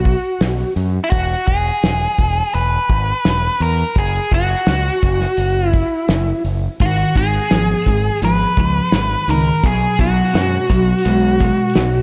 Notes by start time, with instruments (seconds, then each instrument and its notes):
Already playing: fingered electric bass B1, lead electric guitar F#4
0.05 kick, open hi-hat
0.41 fingered electric bass B1, snare, open hi-hat
0.76 fingered electric bass F#2, open hi-hat
1.04 lead electric guitar E4
1.10 fingered electric bass E1, lead electric guitar F#4, kick, open hi-hat
1.47 fingered electric bass E1, lead electric guitar G#4, kick, open hi-hat
1.83 fingered electric bass E1, snare, open hi-hat
2.19 fingered electric bass E1, kick, open hi-hat
2.54 fingered electric bass E1, lead electric guitar B4, open hi-hat
2.89 fingered electric bass G#1, kick, open hi-hat
3.25 fingered electric bass E1, snare, open hi-hat
3.60 fingered electric bass E2, lead electric guitar A#4, open hi-hat
3.95 fingered electric bass F#1, lead electric guitar G#4, kick, open hi-hat
4.31 fingered electric bass F#1, lead electric guitar F#4, kick, open hi-hat
4.67 fingered electric bass C#2, snare, open hi-hat
5.02 fingered electric bass F#1, kick, open hi-hat
5.21 snare
5.37 fingered electric bass F#1, open hi-hat
5.69 lead electric guitar E4
5.73 kick, open hi-hat
6.08 fingered electric bass F#1, snare, open hi-hat
6.44 fingered electric bass F#1, open hi-hat
6.80 fingered electric bass G#1, distorted electric guitar G#2 D#3, lead electric guitar F#4, kick, open hi-hat
7.15 fingered electric bass G#1, distorted electric guitar G#2 D#3, lead electric guitar G#4, kick, open hi-hat
7.51 fingered electric bass G#1, distorted electric guitar G#2 F3, snare, open hi-hat
7.86 fingered electric bass G#1, distorted electric guitar G#2 D#3, kick, open hi-hat
8.22 fingered electric bass G#1, distorted electric guitar G#2 F3, lead electric guitar B4, open hi-hat
8.57 fingered electric bass C#2, distorted electric guitar G#2 F3, kick, open hi-hat
8.92 fingered electric bass G#1, distorted electric guitar G#2 D#3, snare, open hi-hat
9.28 fingered electric bass C#2, distorted electric guitar G#2 D#3, lead electric guitar A#4, open hi-hat
9.63 fingered electric bass B1, distorted electric guitar B2 F#3, lead electric guitar G#4, kick, open hi-hat
9.99 fingered electric bass B1, distorted electric guitar B2 F#3, lead electric guitar F#4, kick, open hi-hat
10.34 fingered electric bass F#2, distorted electric guitar B2 G#3, snare, open hi-hat
10.70 fingered electric bass B1, distorted electric guitar B2 F#3, kick, open hi-hat
11.05 fingered electric bass B1, distorted electric guitar B2 G#3, open hi-hat
11.40 distorted electric guitar B2 G#3, kick, open hi-hat
11.75 fingered electric bass B1, distorted electric guitar B2 F#3, snare, open hi-hat